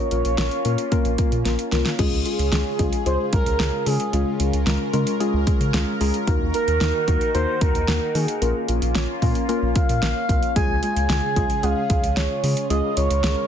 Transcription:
Already playing: A#3 C#4 F4 C#5
0.11 A#1 A#3 C#4 F4 A#4, closed hi-hat
0.25 A#1, closed hi-hat
0.38 A#1 A#3 C#4 F4 A#4, snare, closed hi-hat
0.51 closed hi-hat
0.65 A#2 A#3 C#4 F4 A#4, closed hi-hat
0.78 closed hi-hat
0.92 A#3 C#4 F4 A#4, kick, closed hi-hat
1.05 A#1, closed hi-hat
1.18 A#3 C#4 F4 A#4, kick, closed hi-hat
1.32 A#2, closed hi-hat
1.45 A#1 A#3 C#4 F4 A#4, snare, closed hi-hat
1.59 closed hi-hat
1.72 C2 A#3 C#4 F4 A#4, snare, closed hi-hat
1.85 snare, closed hi-hat
1.99 C#2 C#3 G#3 C#4 F4 G#4, kick, closed hi-hat, crash
2.12 C#2
2.26 G#3 C#4 F4 G#4, closed hi-hat
2.39 C#2, closed hi-hat
2.52 C#2 G#3 C#4 F4 G#4, snare, closed hi-hat
2.79 C#2 G#3 C#4 F4 G#4, kick, closed hi-hat
2.93 closed hi-hat
3.06 C#2 G#3 C#4 F4 G#4 C5, closed hi-hat
3.33 C#2 G#3 C#4 F4 A#4, kick, closed hi-hat
3.46 C#2, closed hi-hat
3.59 C#2 G#3 C#4 F4 G#4, snare, closed hi-hat
3.86 C#3 G#3 C#4 F4 G#4, open hi-hat
4.00 closed hi-hat
4.13 C#2 G#3 C#4 F4 G#4 A#4, closed hi-hat
4.40 C#2 G#3 C#4 F4 G#4, closed hi-hat
4.53 C#2, closed hi-hat
4.67 C#2 G#3 C#4 F4 A#4, snare, closed hi-hat
4.93 C#3 G#3 C#4 F4 A#4, closed hi-hat
5.07 closed hi-hat
5.20 G#3 C#4 F4 G#4, closed hi-hat
5.34 C#2
5.47 G#3 C#4 F4 G#4, kick, closed hi-hat
5.60 C#3, closed hi-hat
5.74 C#2 G#3 C#4 F4 G#4 F5, snare, closed hi-hat
6.01 C#2 G#3 C#4 F4 G#4 A#5, open hi-hat
6.14 closed hi-hat
6.27 D#2 D#3 A#3 D#4 F#4 A#4, kick, closed hi-hat
6.41 D#2
6.54 A#3 D#4 F#4 A#4, closed hi-hat
6.68 D#2, closed hi-hat
6.81 D#2 A#3 D#4 F#4 A#4, snare, closed hi-hat
7.08 D#2 A#3 D#4 F#4 A#4, kick, closed hi-hat
7.21 closed hi-hat
7.34 D#2 A#3 D#4 F#4 A#4 C5, closed hi-hat
7.61 D#2 A#3 D#4 F#4 A#4, kick, closed hi-hat
7.75 D#2, closed hi-hat
7.88 D#2 A#3 D#4 F#4 A#4, snare, closed hi-hat
8.15 D#3 A#3 D#4 F#4 G#4 A#4, open hi-hat
8.28 closed hi-hat
8.42 A#1 A#3 C#4 F4 A#4, closed hi-hat
8.68 A#1 A#3 C#4 F4 A#4, closed hi-hat
8.82 A#1, closed hi-hat
8.95 A#1 A#3 C#4 F4 C#5, snare, closed hi-hat
9.22 A#2 A#3 C#4 F4 A#4, kick, open hi-hat
9.35 closed hi-hat
9.49 A#3 C#4 F4 A#4, closed hi-hat
9.62 A#1
9.76 A#3 C#4 F4 A#4 F5, kick, closed hi-hat
9.89 A#2, closed hi-hat
10.02 A#1 A#3 C#4 F4 A#4, snare, closed hi-hat
10.29 C2 A#3 C#4 F4 A#4, kick, closed hi-hat
10.43 closed hi-hat
10.56 C#2 C#3 G#3 C#4 F4 G#4 G#5, kick, closed hi-hat
10.69 C#2
10.83 G#3 C#4 F4 G#4 G#5, closed hi-hat
10.96 C#2, closed hi-hat
11.10 C#2 G#3 C#4 F4 G#4, snare, closed hi-hat
11.36 C#2 G#3 C#4 F4 G#4, kick, closed hi-hat
11.50 closed hi-hat
11.63 C#2 G#3 C#4 F4 G#4 F5, closed hi-hat
11.90 C#2 G#3 C#4 F4 G#4, kick, closed hi-hat
12.03 C#2, closed hi-hat
12.17 C#2 G#3 C#4 F4 G#4 C#5, snare, closed hi-hat
12.43 C#3 G#3 C#4 F4 G#4, open hi-hat
12.57 closed hi-hat
12.70 C#2 G#3 C#4 F4 G#4 A#4 D#5, closed hi-hat
12.97 C#2 G#3 C#4 F4 G#4 C#5, closed hi-hat
13.10 C#2, closed hi-hat
13.24 C#2 G#3 C#4 F4 G#4, snare, closed hi-hat

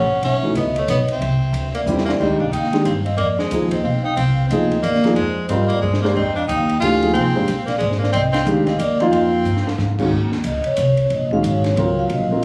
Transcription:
Already playing: C#4 F#5
0.11 muted upright bass stroke
0.22 B1 C#4 E5, ride
0.42 E3 A3 D#4 F#4
0.55 C#2 B3 D#5, hi-hat pedal, ride
0.76 A3 C#5, ride
0.88 B1 B3 D#5, hi-hat pedal, ride
1.08 C4, ride
1.13 E5
1.21 C2, ride
1.53 D2, hi-hat pedal, ride
1.75 A#3 D5, ride
1.86 E2 D3 G3 C4 E4 C5, hi-hat pedal
1.98 snare
2.05 A#3 D5, snare
2.19 F2 D#3 G#3 C4 D4 G4 D#5, kick, snare, crash
2.30 D#2
2.40 C2 D4 F5, kick
2.51 D#2 D#4 G5, hi-hat pedal, ride
2.64 snare
2.72 D#3 G#3 D4 G4, snare, ride
2.85 G2 C4 F5, hi-hat pedal, ride
3.05 C4 D#5, ride
3.17 F2 A#3 D5, ride
3.39 G#3 C5, snare
3.51 D#2 F3 A#3 D#4 G#4, hi-hat pedal, ride
3.71 C4 D#5, kick, ride
3.84 B1 C4 F5
4.04 D#4 G5
4.16 C2 C4 F5, ride
4.49 D2 F3 A#3 C4 D#4 D#5, hi-hat pedal, ride
4.53 G#4
4.71 ride
4.82 D#2 A#3 D5, hi-hat pedal, ride
4.95 snare
5.04 F3 A#3 D#4 G#4, snare, ride
5.15 F2 G#3 C5, ride
5.48 G#2 G3 C4 F4 A#4 D#5, hi-hat pedal, ride
5.68 A#3 D5, ride
5.81 G2 G#3 C5
5.93 snare
6.01 G#3 A#3 D4 G4 D5, snare
6.05 C5
6.15 F2 C4 D#5, kick, crash
6.35 D4 F5
6.48 D#2 D#4 G5, hi-hat pedal, ride
6.69 ride
6.80 D2 E3 A3 D4 F4 G4 G#5, hi-hat pedal, ride
7.02 F3 A#3 D#4 G#4, ride
7.13 C2 C4 F5, ride
7.26 G#1
7.35 F1 G#3 D4 G4 C5
7.48 A#1, hi-hat pedal, ride
7.66 A#3 D5, snare, ride
7.78 G#1 G#3 C5, ride
7.92 snare
7.98 A#3 D5
8.03 snare
8.12 C2 C4 D#5, ride
8.32 C4 F5, snare, ride
8.46 D2 D#3 G#3 D4 G4, hi-hat pedal
8.66 C4 D#5, snare, ride
8.78 D#2 A#3 D5, hi-hat pedal, ride
9.00 F3 A#3 C4 D#4 F4 D#5, ride
9.11 F2 C4 F5, ride
9.45 G2, hi-hat pedal
9.57 snare
9.67 snare
9.78 G#2, snare
9.98 D#3 G#3 C#4 F#4, kick, crash
10.11 D#2
10.32 snare
10.44 C#2 D#5, hi-hat pedal, ride
10.64 C#5, muted upright bass stroke, ride
10.77 C2, hi-hat pedal, ride
10.97 ride
11.10 A#1 D#5, ride
11.31 D#3 G#3 C#4 F#4 F5, kick
11.43 G#1, hi-hat pedal, ride
11.47 C#5
11.64 snare, ride
11.76 C#2 F#3 C4 F4 A#4, ride
11.99 F5
12.10 A#1 D#5, ride
12.31 F#3 C4 F4 A#4

